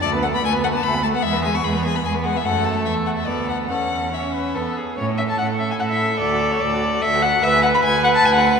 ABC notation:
X:1
M:3/4
L:1/16
Q:1/4=147
K:A
V:1 name="Violin"
d2 f b g2 f a b2 a f | e2 g c' b2 g b g2 f e | f2 a2 e2 f e d2 f2 | f4 e6 z2 |
C E C E C E C E C E C E | A F A F A F A F A F A F | B G B G B G B G B G B G |]
V:2 name="Violin"
A B A B A B A B A B A B | G B G B G B G B G B G B | A8 A4 | A4 c2 B2 A2 G2 |
c2 e a f2 e g f e3 | d3 c d4 e2 f2 | e2 f b g2 f a g f3 |]
V:3 name="Viola"
A, B, A, B, A, B, A, B, A, B, A, B, | G, B, G, B, G, B, G, B, G, B, G, B, | A,8 B,4 | C4 C4 B,2 z2 |
A12- | A12 | B12 |]
V:4 name="Cello" clef=bass
D,,4 D,,4 D,,4 | E,,4 E,,4 E,,4 | F,,4 E,,4 D,,4 | E,,8 E,,2 z2 |
A,,4 A,,4 A,,4 | D,,4 D,,4 D,,4 | D,,4 D,,4 D,,4 |]